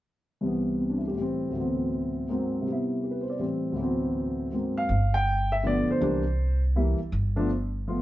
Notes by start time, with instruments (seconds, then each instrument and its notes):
0.41 grand piano C2 C3 E3
0.46 grand piano B3
0.80 grand piano C4
0.89 grand piano D4
0.98 grand piano E4
1.07 grand piano A2 G4
1.15 grand piano E3 G3
1.22 grand piano C4
1.49 grand piano D2 A2
1.53 grand piano E3 F#3
1.58 grand piano B3 C4
2.29 grand piano G#2 F#3 A#3 C4
2.61 grand piano C3 G3
2.68 grand piano B3
2.72 grand piano E4
3.04 grand piano G4
3.11 grand piano B4
3.21 grand piano C5
3.30 grand piano D5
3.39 grand piano A2 E3 G3 C4
3.72 grand piano D2 A2
3.76 grand piano E3 F#3
3.81 grand piano B3 C4
4.52 grand piano G#2 F#3 A#3 C4
4.77 grand piano F5
4.89 upright bass G1
5.14 grand piano G5
5.52 grand piano E5
5.63 grand piano D3 F3 A3 B3 D5
5.88 grand piano C5, muted upright bass stroke
6.01 upright bass C2, grand piano E3 G3 A#3 D4
6.76 grand piano E3 G3 A#3 E4
7.00 muted upright bass stroke
7.12 upright bass G1
7.36 grand piano F3 A3 B3 D4
7.87 grand piano F3 A3 B3 F4